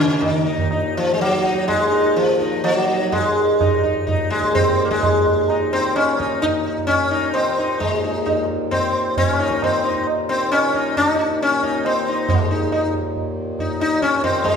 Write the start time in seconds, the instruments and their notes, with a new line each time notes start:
Already playing: harmonium D#2 A#2, sitar C#3
0.21 sitar D#3, tabla na, tabla ge
0.46 sitar D#4, tabla te
0.58 tabla ge
0.71 sitar D#4, tabla na
0.95 sitar F3, tabla na
1.14 sitar G#3
1.20 sitar F#3, tabla te
1.33 tabla te
1.43 sitar D#4, tabla ke
1.57 tabla te
1.68 sitar G#3, tabla na, tabla ge
1.91 sitar D#4
2.16 sitar F3, tabla te
2.29 tabla te
2.40 sitar D#4, tabla ke
2.53 tabla te
2.64 sitar F3, tabla na
2.77 sitar F#3
2.88 sitar D#4
3.12 sitar G#3, tabla na, tabla ge
3.61 sitar D#4, tabla na, tabla ge
3.83 sitar D#4, tabla ge
4.07 sitar D#4, tabla tin, tabla ge
4.30 sitar G#3, tabla na
4.44 tabla ke
4.55 sitar C4, tabla tin, tabla ge
4.79 tabla na
4.85 sitar A#3
4.91 sitar G#3, tabla ke
5.03 tabla na, tabla ge
5.27 tabla ge
5.50 sitar D#4, tabla na
5.73 sitar C4
5.96 sitar C#4, tabla na
6.19 sitar D#4, tabla ke
6.42 sitar D#4, tabla na, tabla ge
6.66 sitar D#4, tabla te
6.78 tabla ge
6.87 sitar C#4, tabla tin, tabla ge
7.11 sitar D#4
7.34 sitar C4, tabla na
7.58 sitar D#4
7.80 harmonium D#2 A#2, sitar G#3, tabla na, tabla ge
8.04 sitar D#4
8.26 sitar D#4, tabla na, tabla ge
8.49 tabla ge
8.71 sitar C4, tabla tin, tabla ge
9.17 sitar C#4, tabla tin, tabla ge
9.39 sitar D#4, tabla na
9.51 tabla ke
9.62 sitar C4, tabla na, tabla ge
9.84 sitar D#4, tabla te
9.96 tabla ge
10.07 tabla na
10.29 sitar C4
10.52 sitar C#4, tabla na
10.74 sitar D#4, tabla ke
10.97 sitar D#4, tabla na, tabla ge
11.19 sitar D#4
11.41 sitar C#4, tabla te
11.52 tabla te
11.62 sitar D#4, tabla ke
11.74 tabla te
11.85 sitar C4, tabla na
12.08 sitar D#4
12.29 sitar G#3, tabla na, tabla ge
12.51 sitar D#4
12.72 sitar D#4, tabla na, tabla ge
12.94 tabla ge
13.16 tabla tin, tabla ge
13.59 sitar D#4, tabla tin, tabla ge
13.80 sitar D#4, tabla na
14.02 sitar C#4, tabla ke
14.16 sitar C#4
14.24 sitar C4, tabla tin, tabla ge
14.44 sitar G#3, tabla na, tabla ge